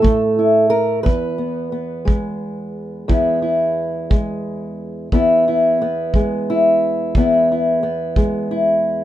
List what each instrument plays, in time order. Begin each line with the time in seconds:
Already playing: steel-string acoustic guitar A2 E4 A4
0.02 steel-string acoustic guitar A3, kick
0.39 steel-string acoustic guitar E4
0.70 steel-string acoustic guitar A#4
1.03 steel-string acoustic guitar E2 B4, kick
1.38 steel-string acoustic guitar B3
1.72 steel-string acoustic guitar B3
2.05 steel-string acoustic guitar G#3, kick
3.08 steel-string acoustic guitar E2 B3 E4, kick
3.42 steel-string acoustic guitar E4
4.10 steel-string acoustic guitar G#3, kick
5.12 steel-string acoustic guitar E2 B3 E4, kick
5.48 steel-string acoustic guitar E4
5.82 steel-string acoustic guitar B3
6.14 steel-string acoustic guitar G#3, kick
6.50 steel-string acoustic guitar E4
7.15 steel-string acoustic guitar E2 B3 E4, kick
7.52 steel-string acoustic guitar E4
7.83 steel-string acoustic guitar B3
8.16 steel-string acoustic guitar G#3, kick
8.51 steel-string acoustic guitar E4